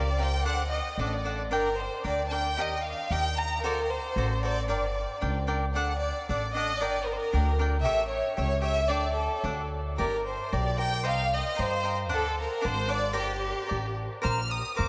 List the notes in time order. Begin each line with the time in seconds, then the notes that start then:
Already playing: C#2 D5
0.18 G4 A#4 D5 F5 G5
0.42 D2 D4 A4 D5 F#5
0.70 D#5
0.98 A1 D4 A4 D5 F#5
1.06 D#5
1.12 D5
1.25 D4 A4 D5 F#5
1.51 G1 D4 A#4 D5 G5
1.80 C5
2.04 D2 D4 A#4 D5 G5
2.28 D4 A5
2.32 A#4 D5 G5
2.58 D#2 G4 A#4 D#5 G5
2.77 G5
2.84 F5
3.10 D#2 G4 A#4 D#5 G5
3.37 A#5
3.63 D2 F#4 A4 A#4 C5 D5
3.91 C5
4.16 A1 F#4 A4 C5 D5
4.43 F#4 A4 C5 D5
4.68 G1 D4 A#4 D5 G5
5.21 C#2 D4 A#4 D5 G5
5.47 D4 A#4 D5 G5
5.73 D2 D4 A4 D5 F#5
5.99 D5
6.27 A1 D4 A4 D5 F#5
6.53 D4 A4 D5 D#5 F#5
6.80 G1 D4 A#4 D5 G5
7.05 A#4
7.12 C5
7.17 A#4
7.33 D2 D4 A#4 D5 G5
7.59 D4 A#4 D5 G5
7.82 A1 G4 A4 C#5 E5
8.09 C#5
8.36 C#2 G4 A4 C#5 E5
8.62 G4 A4 C#5 E5
8.87 D4 A4 D5 G5
8.92 D2
9.14 A4
9.44 D2 D4 A4 D5 F#5
9.98 G1 G4 A#4 D5 G5
10.28 C5
10.52 B1 G4 A#4 D5 G5
10.78 G4 A#4 D5 G5
11.04 C2 C5 D#5 G5 A#5
11.09 F5
11.35 D#5
11.55 G2 C5 D#5 G5 A#5
11.62 C5
11.83 C5 D#5 G5 A#5
12.09 D2 D4 D5 F#5 A5
12.13 A4
12.40 A#4
12.61 G#1 D4 D5 F#5 A5
12.65 C5
12.87 D4 D5 F#5 A5
13.13 G1 G4 A#4 D5 G5
13.18 G4
13.66 G4 A#4 D5 G5
13.71 A1
14.22 A#1 A#4 C5 F5 A#5 F6
14.50 D#6
14.76 F2 A#4 C5 F5 A#5 D6